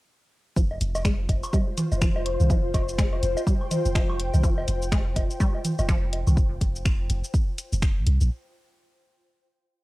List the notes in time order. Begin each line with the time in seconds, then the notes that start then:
0.56 F1 F3 F4, kick, cabasa
0.71 C5, low woodblock
0.81 F1, closed hi-hat, cabasa
0.95 cabasa, high woodblock, low woodblock
1.05 G#3, finger snap, kick, cabasa
1.29 F1, kick, closed hi-hat, cabasa, low woodblock
1.43 cabasa, high woodblock
1.53 G3, kick, cabasa, low woodblock
1.78 closed hi-hat, low conga, cabasa, high woodblock
1.92 F1, cabasa, low woodblock
2.02 F3, finger snap, kick, cabasa
2.16 low woodblock
2.26 G5, closed hi-hat, high woodblock
2.40 C2, low conga, cabasa
2.50 F1 F3, kick, cabasa, low woodblock
2.74 F1, kick, closed hi-hat, cabasa, high woodblock, low woodblock
2.89 cabasa
2.98 G#3, finger snap, kick, cabasa
3.13 high woodblock, low woodblock
3.23 F1, closed hi-hat, cabasa
3.37 cabasa, low woodblock
3.47 G3, kick, cabasa
3.61 high woodblock
3.71 closed hi-hat, low conga, cabasa, low woodblock
3.85 F1, cabasa
3.95 F3, finger snap, kick, cabasa, low woodblock
4.09 high woodblock
4.20 closed hi-hat
4.34 C2, low conga, cabasa, low woodblock
4.44 F1 F3, kick, cabasa, high woodblock
4.58 low woodblock
4.68 F1, closed hi-hat, cabasa
4.82 cabasa
4.92 G#3, finger snap, kick, cabasa, high woodblock, low woodblock
5.16 F1, kick, closed hi-hat, cabasa, low woodblock
5.31 cabasa
5.40 G3, kick, cabasa, high woodblock
5.55 low woodblock
5.65 closed hi-hat, low conga, cabasa
5.79 F1, cabasa, high woodblock, low woodblock
5.89 F3, finger snap, kick, cabasa
6.13 closed hi-hat, low woodblock
6.27 C2, low conga, cabasa, high woodblock
6.37 F1, kick, cabasa
6.61 F1, kick, closed hi-hat, cabasa
6.76 cabasa
6.85 finger snap, kick, cabasa
7.10 F1, closed hi-hat, cabasa
7.24 cabasa
7.34 kick, cabasa
7.58 closed hi-hat, cabasa
7.72 F1, cabasa
7.82 finger snap, kick, cabasa
7.97 A#1
8.06 C2, closed hi-hat
8.21 A#1, cabasa